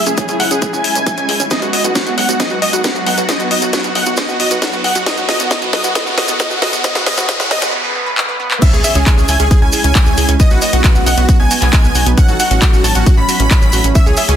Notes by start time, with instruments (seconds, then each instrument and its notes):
Already playing: ambient pad G#3 C#4 E4, riser
0.06 analog synth bass C#2, synth pluck C#4, grand piano G#4, supersaw synth G#4, closed hi-hat, maracas
0.17 supersaw synth G#4, grand piano G#4, synth pluck C#5, kick, closed hi-hat, maracas
0.28 analog synth bass C#2, synth pluck C#4, supersaw synth G#4, grand piano G#4, closed hi-hat, maracas
0.40 analog synth bass C#2, synth pluck E5, supersaw synth F#5, grand piano F#5, open hi-hat
0.51 analog synth bass C#2, synth pluck C#4, grand piano G#4, supersaw synth G#4, closed hi-hat, maracas
0.62 grand piano G#4, supersaw synth G#4, synth pluck G#4, kick, closed hi-hat, maracas
0.73 analog synth bass C#2, synth pluck C#4, grand piano G#5, supersaw synth G#5, maracas
0.84 open hi-hat
0.95 analog synth bass C#2, synth pluck C#4, closed hi-hat, maracas
1.06 synth pluck E5, kick, closed hi-hat, maracas
1.17 analog synth bass C#2, synth pluck C#4, closed hi-hat, maracas
1.29 analog synth bass C#2, synth pluck G#4, open hi-hat
1.40 analog synth bass G#1, synth pluck C#4, closed hi-hat, maracas
1.51 ambient pad F#3 B3 D#4, synth pluck B3, grand piano D#5, supersaw synth D#5, kick, snare, closed hi-hat, maracas
1.62 analog synth bass B1, supersaw synth F#4, grand piano F#4, synth pluck B4, closed hi-hat, maracas
1.73 synth pluck F#4, grand piano D#5, supersaw synth D#5, open hi-hat
1.84 analog synth bass B1, synth pluck B3, grand piano F#4, supersaw synth F#4, closed hi-hat, maracas
1.95 supersaw synth F#4, synth pluck B4, kick, snare, closed hi-hat, maracas
2.06 analog synth bass B1, synth pluck B3, grand piano F#4, supersaw synth F#4, closed hi-hat, maracas
2.17 analog synth bass B1, synth pluck D#5, grand piano F#5, supersaw synth F#5, open hi-hat
2.29 analog synth bass B1, synth pluck B3, grand piano F#4, supersaw synth F#4, closed hi-hat, maracas
2.40 synth pluck B3, grand piano D#5, supersaw synth D#5, kick, snare, closed hi-hat, maracas
2.50 analog synth bass B1, grand piano F#4, supersaw synth F#4, synth pluck B4, maracas
2.62 synth pluck F#4, grand piano D#5, supersaw synth D#5, open hi-hat
2.73 analog synth bass B1, synth pluck B3, grand piano F#4, supersaw synth F#4, closed hi-hat, maracas
2.84 grand piano F#4, supersaw synth F#4, synth pluck B4, kick, snare, closed hi-hat, maracas
2.95 analog synth bass B1, synth pluck B3, supersaw synth F#4, grand piano F#4, maracas
3.06 analog synth bass B1, synth pluck D#5, grand piano F#5, supersaw synth F#5, open hi-hat
3.17 analog synth bass B1, synth pluck B3, grand piano F#4, supersaw synth F#4, closed hi-hat, maracas
3.28 synth pluck B3, grand piano D#5, supersaw synth D#5, kick, snare, closed hi-hat, maracas
3.40 analog synth bass B1, grand piano F#4, supersaw synth F#4, synth pluck B4, closed hi-hat, maracas
3.51 synth pluck F#4, grand piano D#5, supersaw synth D#5, open hi-hat
3.62 analog synth bass B1, synth pluck B3, grand piano F#4, supersaw synth F#4, closed hi-hat, maracas
3.73 supersaw synth F#4, grand piano F#4, synth pluck B4, kick, snare, closed hi-hat, maracas
3.84 analog synth bass B1, synth pluck B3, supersaw synth F#4, grand piano F#4, closed hi-hat, maracas
3.95 analog synth bass B1, synth pluck D#5, supersaw synth F#5, grand piano F#5, open hi-hat
4.06 analog synth bass B1, synth pluck B3, grand piano F#4, supersaw synth F#4, closed hi-hat, maracas
4.17 synth pluck B3, supersaw synth D#5, grand piano D#5, kick, snare, closed hi-hat, maracas
4.29 analog synth bass B1, supersaw synth F#4, grand piano F#4, synth pluck B4, maracas
4.40 synth pluck F#4, grand piano D#5, supersaw synth D#5, open hi-hat
4.51 analog synth bass B1, synth pluck B3, grand piano F#4, supersaw synth F#4, closed hi-hat, maracas
4.62 grand piano F#4, supersaw synth F#4, synth pluck B4, kick, snare, closed hi-hat, maracas
4.73 analog synth bass B1, synth pluck B3, grand piano F#4, supersaw synth F#4, maracas
4.84 analog synth bass B1, synth pluck D#5, grand piano F#5, supersaw synth F#5, open hi-hat
4.95 analog synth bass B1, synth pluck B3, grand piano F#4, supersaw synth F#4, closed hi-hat, maracas
5.06 synth pluck B3, ambient pad C#4 E4 G#4 A4, grand piano D#5, supersaw synth D#5, kick, snare, closed hi-hat, maracas
5.17 analog synth bass F#1, supersaw synth F#4, grand piano F#4, synth pluck B4, closed hi-hat, maracas
5.29 synth pluck F#4, grand piano D#5, supersaw synth D#5, snare, open hi-hat
5.40 analog synth bass F#1, synth pluck B3, supersaw synth F#4, grand piano F#4, closed hi-hat, maracas
5.51 synth pluck B3, supersaw synth D#5, grand piano D#5, kick, snare, closed hi-hat, maracas
5.62 analog synth bass F#1, supersaw synth F#4, grand piano F#4, synth pluck B4, closed hi-hat, maracas
5.73 analog synth bass F#1, synth pluck F#4, supersaw synth D#5, grand piano D#5, snare, open hi-hat
5.84 analog synth bass F#1, synth pluck B3, supersaw synth F#4, grand piano F#4, closed hi-hat, maracas
5.95 synth pluck B3, supersaw synth D#5, grand piano D#5, kick, snare, closed hi-hat, maracas
6.06 analog synth bass F#1, supersaw synth F#4, grand piano F#4, synth pluck B4, maracas
6.17 synth pluck F#4, supersaw synth D#5, grand piano D#5, snare, open hi-hat
6.28 analog synth bass F#1, synth pluck B3, supersaw synth F#4, grand piano F#4, closed hi-hat, maracas
6.39 synth pluck B3, supersaw synth D#5, grand piano D#5, kick, snare, closed hi-hat, maracas
6.50 analog synth bass F#1, supersaw synth F#4, grand piano F#4, synth pluck B4, maracas
6.62 analog synth bass F#1, synth pluck F#4, supersaw synth D#5, grand piano D#5, snare, open hi-hat
6.73 analog synth bass F#1, synth pluck B3, supersaw synth F#4, grand piano F#4, closed hi-hat, maracas
6.84 synth pluck B3, supersaw synth D#5, grand piano D#5, kick, snare, closed hi-hat, noise sweep, maracas
6.95 analog synth bass F#1, supersaw synth F#4, grand piano F#4, synth pluck B4, snare, closed hi-hat, maracas
7.06 synth pluck B3, supersaw synth D#5, grand piano D#5, snare, open hi-hat
7.17 analog synth bass F#1, supersaw synth F#4, grand piano F#4, synth pluck B4, snare, closed hi-hat, maracas
7.28 synth pluck B3, supersaw synth D#5, grand piano D#5, kick, snare, closed hi-hat, maracas
7.40 analog synth bass F#1, supersaw synth F#4, grand piano F#4, synth pluck B4, snare, closed hi-hat, maracas
7.51 analog synth bass F#1, synth pluck B3, grand piano D#5, supersaw synth D#5, snare, open hi-hat
7.62 analog synth bass F#1, grand piano F#4, supersaw synth F#4, synth pluck B4, snare, closed hi-hat, maracas
7.73 synth pluck B3
7.84 synth pluck B4
7.95 synth pluck B3
8.06 synth pluck B4
8.18 synth pluck B3, clap
8.29 synth pluck B4
8.40 synth pluck B3
8.51 synth pluck B4, clap
8.62 ambient pad G#3 C#4 E4, synth pluck C#4, grand piano E5, supersaw synth E5, kick, closed hi-hat, crash, impact, maracas
8.73 analog synth bass C#2, supersaw synth G#4, grand piano G#4, synth pluck C#5, maracas
8.84 synth pluck G#4, supersaw synth E5, grand piano E5, open hi-hat, maracas
8.95 analog synth bass C#2, synth pluck C#4, grand piano G#4, supersaw synth G#4, closed hi-hat, maracas
9.06 supersaw synth G#4, grand piano G#4, synth pluck C#5, kick, clap, closed hi-hat, maracas
9.17 analog synth bass C#2, synth pluck C#4, supersaw synth G#4, grand piano G#4, maracas
9.28 analog synth bass C#2, synth pluck E5, grand piano G#5, supersaw synth G#5, open hi-hat, maracas
9.40 analog synth bass C#2, synth pluck C#4, supersaw synth G#4, grand piano G#4, closed hi-hat, maracas
9.51 synth pluck G#4, supersaw synth G#4, kick, closed hi-hat, maracas
9.62 analog synth bass C#2, synth pluck C#4, grand piano G#5, supersaw synth G#5
9.72 synth pluck G#4, open hi-hat, maracas
9.84 analog synth bass C#2, synth pluck C#4, closed hi-hat, maracas
9.95 synth pluck E5, kick, clap, closed hi-hat, maracas
10.06 analog synth bass C#2, synth pluck C#4, maracas
10.17 analog synth bass C#2, synth pluck G#4, open hi-hat, maracas
10.28 analog synth bass C#2, synth pluck C#4, closed hi-hat, maracas
10.40 ambient pad F#3 B3 D#4, synth pluck B3, grand piano D#5, supersaw synth D#5, kick, closed hi-hat, maracas
10.50 analog synth bass B1, supersaw synth F#4, grand piano F#4, synth pluck B4, maracas
10.62 synth pluck F#4, supersaw synth D#5, grand piano D#5, open hi-hat, maracas
10.73 analog synth bass B1, synth pluck B3, supersaw synth F#4, grand piano F#4, closed hi-hat, maracas
10.84 supersaw synth F#4, grand piano F#4, synth pluck B4, kick, clap, closed hi-hat, maracas
10.95 analog synth bass B1, synth pluck B3, supersaw synth F#4, grand piano F#4, maracas
11.06 analog synth bass B1, synth pluck D#5, supersaw synth F#5, grand piano F#5, open hi-hat, maracas
11.17 analog synth bass B1, synth pluck B3, supersaw synth F#4, grand piano F#4, closed hi-hat, maracas
11.29 supersaw synth F#4, synth pluck F#4, kick, closed hi-hat, maracas
11.40 analog synth bass B1, synth pluck B3, supersaw synth G#5, grand piano G#5
11.51 synth pluck F#4, open hi-hat, maracas
11.61 analog synth bass B1, synth pluck B3, clap, closed hi-hat, maracas
11.73 synth pluck D#5, kick, clap, closed hi-hat, maracas
11.84 analog synth bass B1, synth pluck B3, maracas
11.95 analog synth bass B1, synth pluck F#4, open hi-hat, maracas
12.06 analog synth bass B1, synth pluck B3, closed hi-hat, maracas
12.17 ambient pad A3 E4, synth pluck C#4, supersaw synth F#5, grand piano F#5, kick, closed hi-hat, maracas
12.28 analog synth bass A1, supersaw synth F#4, grand piano F#4, synth pluck A4, maracas
12.40 synth pluck F#4, supersaw synth F#5, grand piano F#5, open hi-hat, maracas
12.51 analog synth bass A1, synth pluck C#4, supersaw synth F#4, grand piano F#4, closed hi-hat, maracas
12.62 grand piano F#4, supersaw synth F#4, kick, clap, closed hi-hat, maracas
12.73 analog synth bass A1, synth pluck C#4, supersaw synth F#4, grand piano F#4, maracas
12.84 analog synth bass A1, synth pluck C#5, supersaw synth A5, grand piano A5, open hi-hat, maracas
12.95 analog synth bass A1, synth pluck C#4, supersaw synth F#4, grand piano F#4, closed hi-hat, maracas
13.06 supersaw synth F#4, synth pluck F#4, kick, closed hi-hat, maracas
13.17 analog synth bass A1, synth pluck C#4, supersaw synth B5, grand piano B5
13.28 synth pluck F#4, open hi-hat, maracas
13.39 analog synth bass A1, synth pluck C#4, closed hi-hat, maracas
13.51 synth pluck C#5, kick, clap, closed hi-hat, maracas
13.62 analog synth bass A1, synth pluck C#4, maracas
13.72 analog synth bass A1, synth pluck F#4, open hi-hat, maracas
13.84 analog synth bass A1, synth pluck C#4, closed hi-hat, maracas
13.95 ambient pad G#3 C#4, synth pluck C#4, grand piano E5, supersaw synth E5, kick, closed hi-hat, maracas
14.06 analog synth bass C#2, supersaw synth G#4, grand piano G#4, synth pluck C#5, maracas
14.17 synth pluck G#4, supersaw synth E5, grand piano E5, open hi-hat, maracas
14.29 analog synth bass C#2, synth pluck C#4, supersaw synth G#4, grand piano G#4, closed hi-hat, maracas